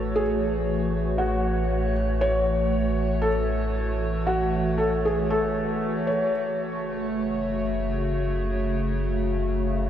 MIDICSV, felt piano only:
0, 0, Header, 1, 2, 480
1, 0, Start_track
1, 0, Key_signature, 3, "major"
1, 0, Tempo, 1016949
1, 1051, Time_signature, 4, 2, 24, 8
1, 4672, End_track
2, 0, Start_track
2, 0, Title_t, "Felt piano"
2, 0, Program_c, 0, 0
2, 0, Note_on_c, 0, 69, 73
2, 74, Note_on_c, 0, 68, 76
2, 99, Note_off_c, 0, 69, 0
2, 558, Note_on_c, 0, 66, 77
2, 577, Note_off_c, 0, 68, 0
2, 905, Note_off_c, 0, 66, 0
2, 1043, Note_on_c, 0, 73, 86
2, 1519, Note_on_c, 0, 69, 77
2, 1542, Note_off_c, 0, 73, 0
2, 2012, Note_on_c, 0, 66, 77
2, 2020, Note_off_c, 0, 69, 0
2, 2255, Note_on_c, 0, 69, 70
2, 2259, Note_off_c, 0, 66, 0
2, 2377, Note_off_c, 0, 69, 0
2, 2385, Note_on_c, 0, 68, 69
2, 2501, Note_off_c, 0, 68, 0
2, 2503, Note_on_c, 0, 69, 80
2, 2863, Note_on_c, 0, 73, 64
2, 2867, Note_off_c, 0, 69, 0
2, 2969, Note_off_c, 0, 73, 0
2, 4672, End_track
0, 0, End_of_file